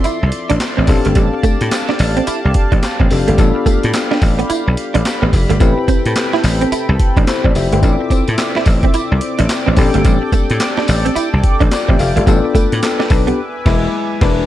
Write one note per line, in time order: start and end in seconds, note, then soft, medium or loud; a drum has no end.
0.00 0.86 F3 medium
0.00 0.84 C4 medium
0.00 0.84 E4 medium
0.00 0.85 F4 medium
0.00 0.85 A4 medium
0.00 5.56 D5 medium
0.00 0.86 E5 medium
0.00 0.86 C6 medium
0.04 0.17 E4 medium
0.04 muted slap bass stroke medium
0.04 closed hi-hat medium
0.04 tambourine medium
0.22 0.30 C2 medium
0.22 muted clean electric guitar stroke soft
0.32 closed hi-hat medium
0.50 0.58 A1 medium
0.50 0.57 D4 medium
0.50 closed hi-hat medium
0.60 snare loud
0.60 clap medium
0.60 closed hi-hat medium
0.60 tambourine medium
0.77 0.85 A1 medium
0.77 0.85 C4 medium
0.87 1.00 A1 loud
0.87 3.06 C4 medium
0.87 3.06 D4 medium
0.87 5.56 G4 medium
0.87 3.07 G4 medium
0.87 3.07 A4 medium
0.87 5.56 F5 medium
0.87 3.36 A5 medium
0.87 muted clean electric guitar stroke soft
0.87 kick loud
0.87 open hi-hat medium
0.87 tambourine medium
1.05 1.13 G1 medium
1.05 1.13 A3 medium
1.05 closed hi-hat medium
1.15 1.28 A1 loud
1.15 1.28 G3 medium
1.15 kick loud
1.15 closed hi-hat medium
1.15 tambourine medium
1.34 muted clean electric guitar stroke medium
1.43 1.56 A3 medium
1.43 muted slap bass stroke medium
1.43 kick medium
1.43 closed hi-hat medium
1.43 tambourine medium
1.61 1.69 A2 loud
1.61 closed hi-hat medium
1.71 snare loud
1.71 clap loud
1.71 closed hi-hat medium
1.71 tambourine loud
1.89 1.96 D4 medium
1.89 snare medium
1.99 2.19 A1 loud
1.99 muted clean electric guitar stroke soft
1.99 open hi-hat medium
1.99 tambourine medium
2.17 2.24 C4 medium
2.17 closed hi-hat medium
2.27 2.39 E4 medium
2.27 muted slap bass stroke soft
2.27 closed hi-hat medium
2.27 tambourine medium
2.45 2.52 C2 medium
2.45 muted clean electric guitar stroke soft
2.54 kick medium
2.54 closed hi-hat medium
2.72 2.80 A1 medium
2.72 2.80 D4 medium
2.72 kick loud
2.72 closed hi-hat medium
2.83 snare loud
2.83 clap medium
2.83 closed hi-hat medium
2.83 tambourine loud
3.00 3.08 A1 medium
3.00 3.07 C4 medium
3.00 kick loud
3.10 3.23 F1 medium
3.10 3.38 C4 medium
3.10 3.37 D4 medium
3.10 3.39 G4 medium
3.10 3.39 A4 medium
3.10 muted clean electric guitar stroke soft
3.10 open hi-hat medium
3.10 tambourine medium
3.28 3.36 G1 medium
3.28 3.35 A3 medium
3.28 closed hi-hat medium
3.38 3.51 A1 loud
3.38 3.50 G3 medium
3.38 5.56 B3 medium
3.38 5.56 D4 medium
3.38 5.57 F4 medium
3.38 5.57 A4 medium
3.38 7.78 B5 loud
3.38 kick loud
3.38 closed hi-hat medium
3.38 tambourine medium
3.55 muted clean electric guitar stroke soft
3.66 3.78 A3 medium
3.66 muted slap bass stroke soft
3.66 kick medium
3.66 closed hi-hat medium
3.66 tambourine medium
3.83 3.91 A2 loud
3.83 closed hi-hat medium
3.93 snare loud
3.93 clap loud
3.93 closed hi-hat medium
3.93 tambourine loud
4.11 4.19 D4 medium
4.11 snare medium
4.22 4.42 A1 loud
4.22 muted clean electric guitar stroke soft
4.22 kick loud
4.22 open hi-hat medium
4.22 tambourine medium
4.39 4.46 B3 medium
4.39 closed hi-hat medium
4.50 4.62 E4 medium
4.50 muted slap bass stroke soft
4.50 closed hi-hat medium
4.50 tambourine medium
4.67 4.75 B1 medium
4.67 muted clean electric guitar stroke soft
4.77 closed hi-hat medium
4.94 5.02 A1 medium
4.94 5.02 D4 medium
4.94 closed hi-hat medium
5.05 snare loud
5.05 clap medium
5.05 closed hi-hat medium
5.05 tambourine medium
5.22 5.30 A1 loud
5.22 5.30 B3 medium
5.32 5.45 F1 medium
5.32 muted clean electric guitar stroke soft
5.32 kick medium
5.32 open hi-hat medium
5.32 tambourine medium
5.50 5.58 G1 medium
5.50 5.57 A3 medium
5.50 closed hi-hat medium
5.60 5.73 A1 loud
5.60 5.72 A3 medium
5.60 7.78 C4 medium
5.60 9.73 C4 medium
5.60 7.24 E4 medium
5.60 7.24 G4 medium
5.60 7.80 A4 medium
5.60 7.25 B4 medium
5.60 7.80 G5 medium
5.60 kick loud
5.60 closed hi-hat medium
5.60 tambourine medium
5.78 muted clean electric guitar stroke medium
5.88 6.00 C4 medium
5.88 muted slap bass stroke medium
5.88 kick medium
5.88 closed hi-hat medium
5.88 tambourine medium
6.06 6.13 A2 loud
6.06 closed hi-hat medium
6.16 snare loud
6.16 clap loud
6.16 closed hi-hat medium
6.16 tambourine loud
6.33 6.41 E4 medium
6.33 snare medium
6.44 6.64 A1 medium
6.44 muted clean electric guitar stroke soft
6.44 open hi-hat medium
6.44 tambourine medium
6.61 6.69 C4 medium
6.61 closed hi-hat medium
6.72 6.84 E4 medium
6.72 muted slap bass stroke soft
6.72 closed hi-hat medium
6.72 tambourine medium
6.89 6.96 C2 loud
6.89 muted clean electric guitar stroke soft
7.00 kick medium
7.00 closed hi-hat medium
7.17 7.24 A1 medium
7.17 7.25 D4 medium
7.17 kick loud
7.17 closed hi-hat medium
7.27 7.44 E4 medium
7.27 7.44 C5 medium
7.27 snare loud
7.27 clap medium
7.27 closed hi-hat medium
7.27 tambourine medium
7.44 7.52 A1 medium
7.44 7.52 C4 medium
7.44 7.55 D5 medium
7.44 kick medium
7.55 7.67 F1 medium
7.55 7.72 G4 medium
7.55 7.72 E5 medium
7.55 muted clean electric guitar stroke soft
7.55 open hi-hat medium
7.55 tambourine medium
7.72 7.80 G1 medium
7.72 7.80 A3 medium
7.72 7.99 B4 medium
7.72 7.99 G5 medium
7.72 closed hi-hat medium
7.82 7.95 A1 loud
7.82 9.73 C4 medium
7.82 7.95 D4 medium
7.82 9.73 E4 medium
7.82 9.74 F4 medium
7.82 9.74 A4 medium
7.82 13.34 D5 medium
7.82 9.75 E5 medium
7.82 14.45 D6 loud
7.82 kick loud
7.82 closed hi-hat medium
7.82 tambourine medium
8.01 muted clean electric guitar stroke soft
8.10 8.23 C4 medium
8.10 muted slap bass stroke soft
8.10 kick medium
8.10 closed hi-hat medium
8.10 tambourine medium
8.28 8.36 A2 loud
8.28 closed hi-hat medium
8.38 snare loud
8.38 clap loud
8.38 closed hi-hat medium
8.38 tambourine loud
8.55 8.64 E4 medium
8.55 snare medium
8.66 8.86 A1 medium
8.66 muted clean electric guitar stroke soft
8.66 kick loud
8.66 open hi-hat medium
8.66 tambourine medium
8.83 8.91 C4 medium
8.83 kick loud
8.83 closed hi-hat medium
8.94 9.06 E4 medium
8.94 muted slap bass stroke soft
8.94 closed hi-hat medium
8.94 tambourine medium
9.11 9.19 C2 medium
9.11 muted clean electric guitar stroke soft
9.21 closed hi-hat medium
9.39 9.47 A1 medium
9.39 9.46 D4 medium
9.39 closed hi-hat medium
9.49 snare loud
9.49 clap medium
9.49 closed hi-hat medium
9.49 tambourine medium
9.66 9.75 A1 medium
9.66 9.74 C4 medium
9.76 9.90 A1 loud
9.76 11.95 C4 medium
9.76 11.95 D4 medium
9.76 11.41 G4 medium
9.76 12.25 A4 medium
9.76 11.41 A4 medium
9.76 13.35 G5 medium
9.76 muted clean electric guitar stroke soft
9.76 kick medium
9.76 open hi-hat medium
9.76 tambourine medium
9.94 10.02 G1 medium
9.94 10.02 A3 medium
9.94 closed hi-hat medium
10.05 10.17 A1 loud
10.05 10.17 G3 medium
10.05 kick loud
10.05 closed hi-hat medium
10.05 tambourine medium
10.22 muted clean electric guitar stroke medium
10.32 10.45 A3 medium
10.32 muted slap bass stroke medium
10.32 kick medium
10.32 closed hi-hat medium
10.32 tambourine medium
10.50 10.58 A2 loud
10.50 closed hi-hat medium
10.60 snare loud
10.60 clap loud
10.60 closed hi-hat medium
10.60 tambourine loud
10.77 10.85 D4 medium
10.77 snare medium
10.88 11.08 A1 loud
10.88 muted clean electric guitar stroke soft
10.88 open hi-hat medium
10.88 tambourine medium
11.05 11.13 C4 medium
11.05 closed hi-hat medium
11.15 11.28 E4 medium
11.15 muted slap bass stroke soft
11.15 closed hi-hat medium
11.15 tambourine medium
11.33 11.41 C2 medium
11.33 muted clean electric guitar stroke soft
11.44 kick medium
11.44 closed hi-hat medium
11.60 11.69 A1 medium
11.60 11.68 D4 medium
11.60 kick loud
11.60 closed hi-hat medium
11.71 11.88 F4 medium
11.71 11.88 D5 medium
11.71 snare loud
11.71 clap medium
11.71 closed hi-hat medium
11.71 tambourine medium
11.88 11.96 A1 loud
11.88 11.96 C4 medium
11.88 11.99 G4 medium
11.88 11.99 E5 medium
11.88 kick medium
11.99 12.12 F1 medium
11.99 12.16 A4 medium
11.99 12.16 F5 medium
11.99 muted clean electric guitar stroke soft
11.99 open hi-hat medium
11.99 tambourine medium
12.16 12.24 G1 medium
12.16 12.24 A3 medium
12.16 12.27 F4 medium
12.16 12.43 D5 medium
12.16 closed hi-hat medium
12.26 12.39 A1 loud
12.26 12.39 G3 medium
12.26 12.81 B3 medium
12.26 12.82 D4 medium
12.26 12.82 F4 medium
12.26 12.82 A4 medium
12.26 14.46 B4 medium
12.26 kick loud
12.26 closed hi-hat medium
12.26 tambourine medium
12.44 muted clean electric guitar stroke soft
12.55 12.67 A3 medium
12.55 muted slap bass stroke medium
12.55 kick loud
12.55 closed hi-hat medium
12.55 tambourine medium
12.72 12.80 A2 medium
12.72 closed hi-hat medium
12.83 13.09 A4 medium
12.83 snare loud
12.83 clap loud
12.83 closed hi-hat medium
12.83 tambourine loud
12.99 13.07 D4 medium
12.99 snare medium
13.10 13.30 B1 loud
13.10 13.27 D4 medium
13.10 13.27 B4 medium
13.10 muted clean electric guitar stroke soft
13.10 kick loud
13.10 open hi-hat medium
13.10 tambourine medium
13.27 13.35 B3 medium
13.27 13.38 B3 medium
13.27 13.38 G4 medium
13.27 closed hi-hat medium
13.37 14.46 E5 medium
13.37 14.46 G#5 medium
13.66 13.86 E1 loud
13.66 13.87 G#3 loud
13.66 13.86 E4 loud
13.66 kick loud
13.66 snare loud
13.66 crash medium
14.21 14.42 E1 loud
14.21 14.42 D4 loud
14.21 14.42 B4 loud
14.21 kick loud
14.21 snare loud
14.21 crash medium